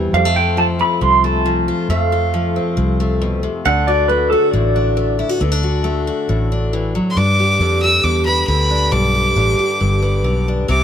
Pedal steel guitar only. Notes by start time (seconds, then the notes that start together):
0.14 F5
0.36 G5
0.58 A5
0.81 B5
1.02 C6
1.25 A5
1.90 F5
3.66 F#5
3.87 D5
4.08 B4
4.30 A4
4.51 D5